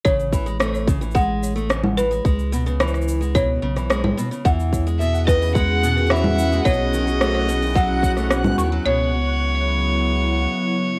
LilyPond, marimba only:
\new Staff \with { instrumentName = "Marimba" } { \time 4/4 \key cis \minor \tempo 4 = 109 cis''8 r4. fis''8 r4 b'8 | r2 cis''8 r4. | fis''8 r4 b'8 r2 | cis''8 r4. fis''8 r4 cis'''8 |
cis''8 r2. r8 | }